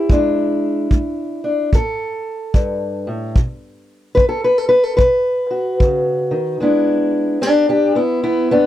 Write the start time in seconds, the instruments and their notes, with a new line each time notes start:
Already playing: steel-string acoustic guitar E4
0.10 steel-string acoustic guitar E2 G#3 D4, kick
0.91 steel-string acoustic guitar G#3, kick
1.44 steel-string acoustic guitar D4
1.73 steel-string acoustic guitar A2 A4, kick
2.54 steel-string acoustic guitar G2, kick
3.07 steel-string acoustic guitar A2
3.36 steel-string acoustic guitar B2, kick
4.15 steel-string acoustic guitar D#3 B4, kick
4.29 steel-string acoustic guitar A4
4.44 steel-string acoustic guitar B4
4.58 steel-string acoustic guitar A4
4.69 steel-string acoustic guitar B4
4.84 steel-string acoustic guitar A4
4.97 steel-string acoustic guitar B2 B4, kick
5.51 steel-string acoustic guitar F#4
5.80 steel-string acoustic guitar C#3, kick
6.31 steel-string acoustic guitar D#3
6.60 steel-string acoustic guitar E2 G#3 B3 D4 E4
7.41 steel-string acoustic guitar G#3 D4 G4
7.69 steel-string acoustic guitar D4 G4
7.95 steel-string acoustic guitar B3 E4
8.23 steel-string acoustic guitar E2 B3 E4
8.51 steel-string acoustic guitar B3 D4